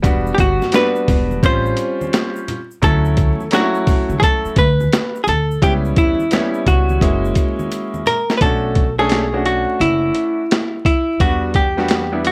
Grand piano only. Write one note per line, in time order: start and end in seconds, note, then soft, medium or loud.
0.02 0.61 G3 medium
0.02 0.62 B3 medium
0.02 0.62 D4 medium
0.02 0.62 F#4 medium
0.73 1.41 G3 medium
0.73 1.43 B3 medium
0.73 1.43 D4 medium
0.73 1.43 F#4 medium
1.43 2.57 G3 medium
1.43 2.57 C4 medium
1.43 2.57 C#4 medium
1.43 2.57 F4 medium
2.82 3.41 F#3 medium
2.82 3.41 A3 medium
2.82 3.41 C#4 medium
2.82 3.41 E4 medium
3.52 4.61 F#3 medium
3.52 4.61 A3 medium
3.52 4.61 C#4 medium
3.52 3.61 D4 medium
3.60 4.64 E4 medium
5.62 6.20 G3 medium
5.62 6.20 B3 medium
5.62 6.20 C#4 medium
5.62 6.21 E4 medium
6.32 7.02 G3 medium
6.32 7.02 B3 medium
6.32 7.01 C#4 medium
6.32 7.01 E4 medium
7.01 8.15 G#3 medium
7.01 8.15 A#3 medium
7.01 8.15 C#4 medium
7.01 8.15 E4 medium
8.41 8.83 A3 medium
8.41 8.83 C#4 medium
8.41 8.83 D4 medium
8.41 8.84 F#4 medium
8.98 9.23 A3 medium
8.98 9.23 C#4 medium
8.98 9.23 D4 medium
8.98 9.24 A4 medium
9.33 10.40 A3 medium
9.33 10.40 C#4 medium
9.33 10.40 D4 medium
9.33 10.40 F#4 medium
11.20 11.62 G3 medium
11.20 11.62 B3 medium
11.20 11.62 D4 medium
11.20 11.63 F#4 medium
11.77 12.02 G3 medium
11.77 12.02 B3 medium
11.77 12.02 D4 medium
11.77 12.03 F#4 medium
12.12 12.32 G3 medium
12.12 12.32 B3 medium
12.12 12.32 D4 medium
12.12 12.32 E4 medium